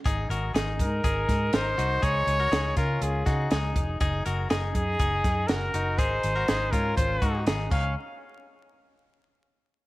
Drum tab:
CC |--------|--------|--------|-------x|
HH |xxxxxxxx|xxxxxxxx|xxxxxxxx|xxxxxxx-|
SD |--o--oo-|--o--oo-|--o--oo-|--o---o-|
BD |o--ooo--|o--o-o-o|o--ooo--|o--ooo-o|

CC |--------|
HH |--------|
SD |--------|
BD |--------|